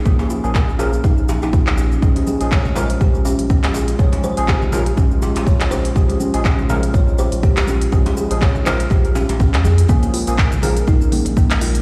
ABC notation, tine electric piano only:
X:1
M:4/4
L:1/16
Q:"Swing 16ths" 1/4=122
K:Db
V:1 name="Tine electric piano"
[F,B,DA]3 [F,B,DA] z2 [F,B,DB] z8 z | [F,A,DA]3 [F,A,DA] z2 [F,A,DB] z8 z | [F,A,DA]3 [F,A,DA] z2 [F,A,DB] z8 z | [F,A,DA]3 [F,A,DA] z2 [F,A,DB] z8 z |
[F,A,DA]3 [F,A,DA] z2 [F,A,DB] z8 z | [F,B,DA]3 [F,B,DA] z2 [F,B,DB] z8 z |]